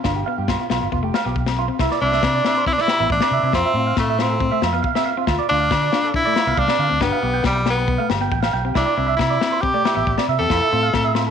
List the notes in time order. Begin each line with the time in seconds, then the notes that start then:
0.04 G1 D4 F4, kick, snare, low agogo
0.16 G4
0.26 B3 F5
0.38 G2 G4
0.48 B3 F4, kick, snare, low agogo
0.60 F4
0.70 B1 B3 F4, snare, low agogo
0.82 G1 F4
0.92 F1 B3 F4, kick
1.03 A3 G4
1.14 F5, snare, low agogo
1.25 B1 B3 G4
1.36 kick
1.46 C4, snare, low agogo
1.59 F4
1.68 C4
1.79 C2 E4, kick, snare, low agogo
1.91 D5, snare
2.02 C2 C4 D4 E4
2.12 E5, snare
2.23 C3 C4, kick, snare, low agogo
2.35 D5
2.45 C4 E4, snare, low agogo
2.57 C5
2.66 C4 E4, kick
2.73 D4
2.78 E4 D5, muted clean electric guitar stroke, snare
2.88 G4, snare, low agogo
2.99 A1 B3 E5
3.10 A1 D4, muted clean electric guitar stroke, kick
3.21 C4 D5, snare, low agogo
3.31 C3 E5
3.43 C3 C4 E4
3.53 F2 C4 F4, kick, snare, low agogo
3.66 E5
3.74 A2 C4 F4
3.87 F5
3.97 A2 A3 C4, kick, snare, low agogo
4.10 E5
4.19 C4 F4, snare, low agogo
4.30 A4
4.40 C4, kick
4.52 A3 E5
4.62 F2 F4, snare, low agogo
4.73 B3 F5
4.83 F5, kick
4.95 C4 E5, snare, low agogo
5.06 F5
5.17 C4 F4
5.27 D2 F4, kick, snare, low agogo
5.39 D5
5.49 D2 D4 F4
5.60 F5
5.71 D3 D4, kick, snare, low agogo
5.82 D5
5.92 D4 F4, snare, low agogo
6.03 A4
6.14 D4 E4, kick
6.25 A3 D5
6.36 F4, snare, low agogo
6.47 C2 B3 F5
6.57 C2 D4 F5, kick
6.68 C4 D5, snare, low agogo
6.79 D3 F5
6.89 D2 C4
7.01 G1 B3 D4 G4, kick, snare, low agogo
7.12 F5
7.22 B1 B3 G4
7.34 G5
7.43 B1 G3 B3, kick, snare, low agogo
7.56 muted clean electric guitar stroke
7.66 B3 G4, snare, low agogo
7.70 B3
7.77 B4
7.88 B3, kick
7.98 A3 F5
8.10 G1 G4, snare, low agogo
8.21 B3 G5
8.32 A1 G5, kick
8.42 F5, snare, low agogo
8.53 B1 G5
8.65 C4 G4
8.75 C2 D4 E4, kick, snare, low agogo
8.86 D5
8.97 C2 C4 E4
9.08 E5
9.16 C3 C4 E4, kick, snare, low agogo
9.30 D5
9.41 C4, muted clean electric guitar stroke, snare, low agogo
9.52 C5
9.62 C4 G4, kick
9.74 A3 D5
9.85 E4, snare, low agogo
9.95 A1 B3 E5
10.07 A1, kick
10.18 C4 D5, snare, low agogo
10.28 C3 E5
10.39 E2 C4 G4 A4
10.50 F2 E4 F4, kick, snare, low agogo
10.62 E5
10.72 A2 C4 F4
10.83 F5
10.93 A2 C4, kick, snare, low agogo
11.04 E5
11.15 C4 F4, snare, low agogo
11.27 A4